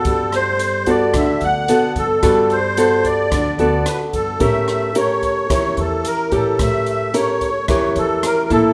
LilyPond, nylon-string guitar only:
\new Staff \with { instrumentName = "Nylon-string guitar" } { \time 4/4 \key a \dorian \tempo 4 = 110 << { <b fis' a'>4 r8 <b fis' a'>4. <b fis' a'>8 r8 | <b fis' a'>8 r8 <b fis' a'>4. <b fis' a'>4. | <cis' g' bes'>4 <cis' g' bes'>4 <cis' g' bes'>4. <cis' g' bes'>8~ | <cis' g' bes'>4 <cis' g' bes'>8 r8 <cis' g' bes'>4. <bes e' a'>8 | } \\ { g2 d2 | g2 d2 | a2 e2 | a2 e2 | } >> }